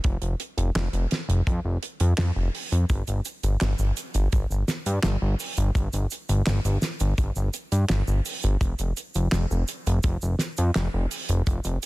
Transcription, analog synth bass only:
0.05 0.17 F1 loud
0.22 0.35 F1 medium
0.57 0.71 F1 medium
0.75 0.88 F1 loud
0.93 1.06 F1 medium
1.29 1.42 F1 medium
1.47 1.60 F2 loud
1.65 1.78 F1 medium
2.01 2.14 F2 medium
2.18 2.31 F2 loud
2.36 2.49 F1 medium
2.72 2.85 F2 medium
2.90 3.03 G1 loud
3.08 3.21 G1 medium
3.43 3.56 G1 medium
3.61 3.74 G1 loud
3.79 3.92 G1 medium
4.15 4.28 G1 medium
4.33 4.46 G1 loud
4.50 4.64 G1 medium
4.86 4.99 G2 medium
5.04 5.17 G1 loud
5.22 5.35 G1 medium
5.58 5.71 G1 medium
5.75 5.88 G1 loud
5.93 6.06 G1 medium
6.29 6.42 G1 medium
6.47 6.60 G1 loud
6.65 6.78 G1 medium
7.01 7.14 G1 medium
7.18 7.31 G1 loud
7.36 7.49 G1 medium
7.72 7.85 G2 medium
7.90 8.03 G1 loud
8.08 8.21 G1 medium
8.44 8.57 G1 medium
8.61 8.74 F1 loud
8.80 8.92 F1 medium
9.15 9.28 F1 medium
9.33 9.46 F1 loud
9.51 9.64 F1 medium
9.87 9.99 F1 medium
10.04 10.17 F1 loud
10.23 10.35 F1 medium
10.58 10.71 F2 medium
10.76 10.89 F1 loud
10.94 11.07 F1 medium
11.29 11.42 F1 medium
11.47 11.60 F1 loud
11.65 11.78 F1 medium

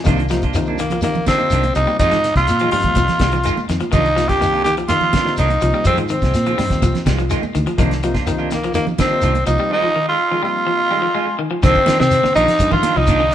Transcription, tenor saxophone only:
0.80 1.02 A#3 medium
1.03 1.25 A#3 medium
1.28 1.72 C4 medium
1.75 1.98 D#4 medium
1.99 2.33 D#4 loud
2.37 2.70 F4 medium
2.72 3.64 F4 loud
3.92 4.30 D#4 loud
4.28 4.63 G4 loud
4.64 4.75 G4 medium
4.89 5.34 F4 loud
5.39 5.83 D#4 medium
5.87 5.97 C4 medium
6.11 7.02 C4 medium
8.53 8.74 A#3 medium
8.75 8.85 A#3 medium
9.00 9.44 C4 medium
9.46 9.69 D#4 medium
9.73 10.05 D#4 loud
10.09 10.41 F4 medium
10.44 11.36 F4 loud
11.64 11.97 C4 loud
12.00 12.33 C4 medium
12.35 12.69 D#4 loud
12.73 12.99 F4 loud
12.97 13.35 D#4 loud

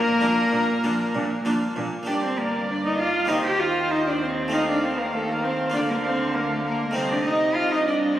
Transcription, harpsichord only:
0.00 0.18 A#2 medium
0.21 0.49 A#2 medium
0.21 0.66 A#3 soft
0.21 0.66 D4 medium
0.21 0.66 F4 medium
0.52 0.80 A#2 medium
0.84 1.12 A#2 medium
0.84 1.28 A#3 medium
0.84 1.29 D4 medium
0.84 1.29 F4 medium
1.15 1.43 A#2 medium
1.45 1.73 A#2 medium
1.45 1.90 A#3 medium
1.45 1.90 D4 medium
1.45 1.91 F4 medium
1.76 2.05 A#2 medium
2.03 3.24 A#3 soft
2.03 3.25 D4 soft
2.03 3.26 G4 soft
2.08 3.27 G2 soft
3.25 4.46 A#3 soft
3.25 4.47 C4 soft
3.25 4.48 G4 soft
3.30 5.70 D#3 soft
4.48 5.68 A3 soft
4.48 5.69 C4 soft
4.48 5.69 F4 soft
5.70 6.90 A#3 soft
5.70 6.90 F4 soft
5.74 6.92 D3 soft
6.91 8.20 A3 soft
6.91 8.20 C4 soft
6.91 8.20 D#4 soft
6.96 8.20 C3 soft

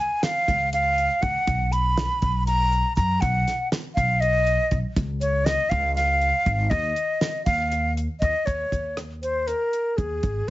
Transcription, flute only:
0.00 0.25 G#5 medium
0.23 0.72 F5 loud
0.73 1.24 F5 loud
1.22 1.74 F#5 medium
1.72 2.46 B5 medium
2.47 2.93 A#5 loud
2.96 3.22 A#5 medium
3.21 3.69 F#5 medium
3.95 4.22 F5 loud
4.20 4.77 D#5 loud
5.21 5.47 C#5 medium
5.45 5.71 D#5 loud
5.70 5.95 F5 loud
5.95 6.71 F5 loud
6.70 7.45 D#5 medium
7.45 7.92 F5 loud
8.20 8.47 D#5 loud
8.46 8.97 C#5 medium
9.22 9.49 C5 medium
9.47 9.98 A#4 medium
9.97 10.49 G#4 medium

